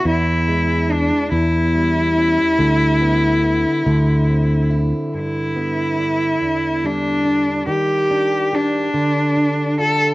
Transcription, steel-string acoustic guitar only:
\new Staff \with { instrumentName = "Steel-string acoustic guitar" } { \time 6/8 \key g \major \tempo 4. = 47 << { e'8 gis8 d'8 r8 g8 cis'8 | r8 b8 b8 r8 c'8 e'8 | r8 b8 d'8 r8 g8 d'8 | r8 d'8 g'8 r8 d'8 f'8 | } \\ { e,4. e,4. | d4. d4. | g,4. e,4. | ees4. d4. | } >> }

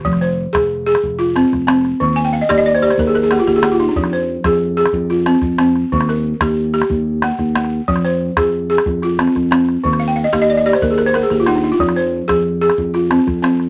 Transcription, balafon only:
\new Staff \with { instrumentName = "Balafon" } { \time 12/8 \key f \dorian \tempo 4. = 122 << { r8 c''4. r4. f'4. r4 | r8 aes''16 g''16 f''16 ees''16 d''16 ees''16 d''16 c''16 d''16 c''16 bes'16 aes'16 bes'16 aes'16 g'16 f'16 g'16 aes'16 g'16 f'16 ees'16 d'16~ | d'16 r16 c''4. r4. f'4. r4 | r8 bes'4. r1 |
r8 c''4. r4. f'4. r4 | r8 f''16 g''16 f''16 ees''16 f''16 ees''16 d''16 ees''16 d''16 c''16 bes'16 aes'16 bes'16 c''16 bes'16 aes'16 g'16 f'16 ees'16 d'16 ees'16 f'16~ | f'16 r16 c''4. r4. f'4. r4 | } \\ { f4 r8 aes'4 aes'4 r8 c'4 c'4 | ees4 r8 g'4 g'4 r8 bes4 bes4 | f4 r8 aes'4 aes'4 r8 c'4 c'4 | ees4 r8 g'4 g'4 r8 bes4 bes4 |
f4 r8 aes'4 aes'4 r8 c'4 c'4 | ees4 r8 g'4 g'4 r8 bes4 bes4 | f4 r8 aes'4 aes'4 r8 c'4 c'4 | } >> }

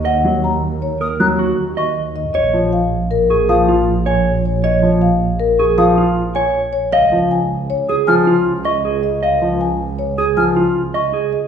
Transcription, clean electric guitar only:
\new Staff \with { instrumentName = "Clean electric guitar" } { \time 6/4 \key ais \phrygian \tempo 4 = 157 dis''8 r2 ais'8 r8 fis'8 r8 dis''8 r4 | cis''8 r2 gis'8 r8 eis'8 r8 cis''8 r4 | cis''8 r2 gis'8 r8 eis'8 r8 cis''8 r4 | dis''8 r2 gis'8 r8 eis'8 r8 dis''8 gis'8 r8 |
dis''8 r2 gis'8 r8 eis'8 r8 dis''8 gis'8 r8 | }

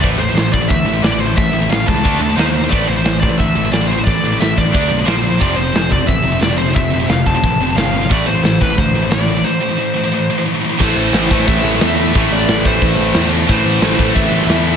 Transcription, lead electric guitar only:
\new Staff \with { instrumentName = "Lead electric guitar" } { \time 4/4 \key a \minor \tempo 4 = 178 d''8 c''4 d''8 e''4 d''8 c''8 | e''4 f''8 a''4. c''4 | d''8 c''4 d''8 e''4 d''8 c''8 | d''4 e''8 d''4. c''4 |
d''8 c''4 d''8 e''4 d''8 c''8 | e''4 f''8 a''4. f''4 | d''8 c''4 b'8 c''4 d''4 | c''2. r4 |
c''2 e''2 | e''8 d''4 c''2 r8 | c''2 e''2 | }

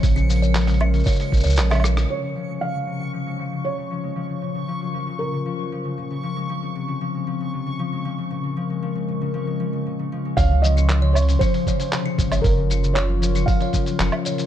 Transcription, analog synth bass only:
\new Staff \with { instrumentName = "Analog synth bass" } { \clef bass \time 4/4 \key des \major \tempo 4 = 116 bes,,2 r8 bes,,16 des,16 bes,,4 | r1 | r1 | r1 |
r1 | des,2 r4. aes,,8 | ges,,2 r4 ges,,16 r8. | }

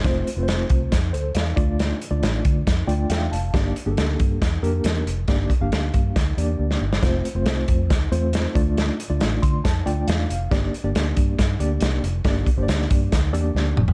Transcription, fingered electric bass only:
\new Staff \with { instrumentName = "Fingered electric bass" } { \clef bass \time 4/4 \key g \dorian \tempo 4 = 138 f,,8 r16 f,,8. c,8 f,8 d,8 e,8 d,8~ | d,8 r16 d,16 a,,8 d8 f,8 d,8 e,8 f,,8 | g,,8 r16 g,,16 d,8 g,8 e,8 f,8 e,8 f,,8 | g,,8 r16 g,,16 d,8 g,8 d,8 e,8 d,8 g,,8 |
f,,8 r16 f,,16 c,8 f,8 d,8 e,4 d,8~ | d,8 r16 d,16 a,,8 d8 f,8 d,8 e,8 f,,8 | g,,8 r16 g,,16 d,8 g,8 g,8 d,8 c,8 f,,8 | g,,8 r16 g,,16 d,8 g,8 d,8 e,8 d,8 f,,8 | }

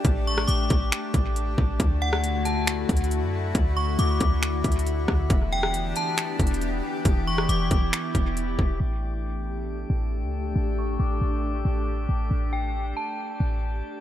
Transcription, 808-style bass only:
\new Staff \with { instrumentName = "808-style bass" } { \clef bass \time 4/4 \key a \mixolydian \tempo 4 = 137 a,,4 a,,8 a,,8 r8 a,,4 a,,8 | d,2~ d,8 d,8. fis,8. | d,4 d,8 d,4 d,4 d,8 | e,,4. r4 e,,4 r8 |
e,,4 e,,8 e,,8 r8 e,,4 e,,8 | a,,2~ a,,8 a,,8. cis,8. | a,,4 a,,8 a,,4 a,,4 a,,8 | a,,4. r4 a,,4 r8 | }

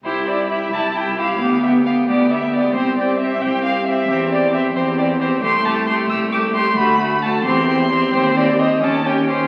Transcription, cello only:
\new Staff \with { instrumentName = "Cello" } { \clef bass \time 6/8 \key c \major \tempo 4. = 89 c,4. c,4. | d,4. d,4. | c,4. c,4. | e,4. e,4. |
\key c \lydian c,4. c,4. | d,4. e,4. | ees,4. ees,4. | }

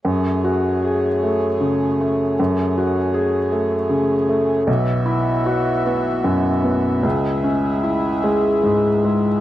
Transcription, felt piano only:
\new Staff \with { instrumentName = "Felt piano" } { \time 3/4 \key fis \minor \tempo 4 = 76 fis,8 fis'8 gis'8 a8 cis8 a8 | fis,8 fis'8 gis'8 a8 cis8 a8 | b,,8 e'8 fis'8 b8 fis,8 b8 | cis,8 cis'8 e'8 gis8 gis,8 gis8 | }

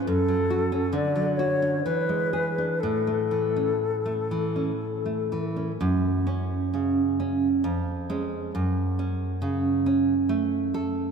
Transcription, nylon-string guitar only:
\new Staff \with { instrumentName = "Nylon-string guitar" } { \time 3/4 \key a \major \tempo 4 = 66 fis,16 fis16 fis'16 cis'16 d16 fis16 fis'16 d'16 e16 gis16 gis'16 d'16 | a,16 a16 e16 cis'8 a16 e16 cis'8 a16 e16 cis'16 | \key fis \minor fis,8 cis'8 cis8 cis'8 eis,8 <gis cis'>8 | fis,8 cis'8 cis8 cis'8 a8 a'8 | }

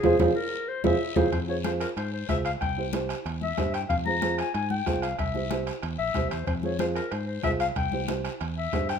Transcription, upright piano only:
\new Staff \with { instrumentName = "Upright piano" } { \time 4/4 \key f \minor \tempo 4 = 186 <f' aes' c''>8 <f' aes' c''>8 r4. <f' aes' c''>8 r8 <f' aes' c''>8 | r8 <f' aes' c''>8 <f' aes' c''>8 r4. <f' aes' c''>8 r8 | r8 <e' g' c''>8 <e' g' c''>8 r4. <e' g' c''>8 r8 | r8 <f' aes' c''>8 <f' aes' c''>8 r4. <f' aes' c''>8 r8 |
r8 <e' g' c''>8 <e' g' c''>8 r4. <e' g' c''>8 r8 | r8 <f' aes' c''>8 <f' aes' c''>8 r4. <f' aes' c''>8 r8 | r8 <e' g' c''>8 <e' g' c''>8 r4. <e' g' c''>8 r8 | }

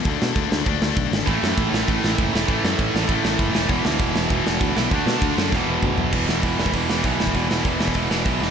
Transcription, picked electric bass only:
\new Staff \with { instrumentName = "Picked electric bass" } { \clef bass \time 4/4 \key a \major \tempo 4 = 197 d,8 b,8 d,8 d,8 d,8 d,8 b,,8 gis,,8 | a,,8 fis,8 a,,8 a,,8 a,,8 a,,8 fis,,8 e,,8 | a,,8 fis,8 a,,8 a,,8 a,,8 a,,8 fis,,8 e,,8 | e,,8 d,8 e,,8 e,,8 e,,8 e,,8 d,8 b,,8 |
d,8 b,8 d,8 fis,8 e,,8 e,,8 d,8 b,,8 | e,,8 e,,8 e,,8 e,,8 e,,8 e,,8 b,,8 e,,8 | e,,8 e,,8 e,,8 e,,8 e,,8 e,,8 b,,8 e,,8 | }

